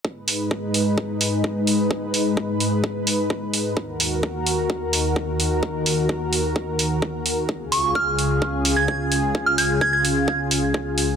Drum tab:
HH |-o-o-o-o|-o-o-o-o|-o-o-o-o|-o-o-o-o|
BD |o-o-o-o-|o-o-o-o-|o-o-o-o-|o-o-o-o-|

HH |-o-o-o-o|-o-o-o-o|
BD |o-o-o-o-|o-o-o-o-|